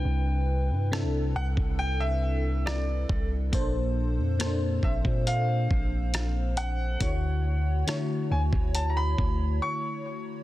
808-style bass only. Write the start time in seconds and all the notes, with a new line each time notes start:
0.05 C2
0.70 G2
1.03 C2
1.35 C2
1.57 C2
3.09 C2
3.53 A#1
4.18 F2
4.83 A#1
5.05 A#2
5.71 A#1
7.01 D2
8.31 D2
8.53 D2
9.18 D2